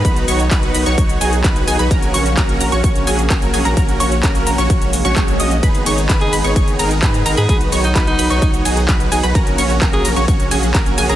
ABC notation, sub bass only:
X:1
M:4/4
L:1/16
Q:1/4=129
K:F#
V:1 name="Sub bass" clef=bass
B,,,2 B,,,2 B,,,2 B,,, B,,, B,,,2 B,,,2 B,,,2 B,,, B,,, | A,,,2 A,,,2 A,,,2 A,,, A,,, A,,,2 A,,,2 A,,,2 A,,, A,,, | A,,,2 A,,,2 A,,,2 A,,, A,,, A,,,3 A,,, A,,,2 A,,,2 | G,,,2 G,,,2 G,,,2 G,,, G,,, G,,,2 G,,,2 G,,2 G,,, G,, |
B,,,2 B,,,2 B,,,2 B,,, B,,, B,,,2 B,,,2 B,,,2 B,,, B,,, | A,,,2 A,,,2 A,,,2 A,,, A,,, A,,,2 A,,,2 A,,,2 A,,, A,,, |]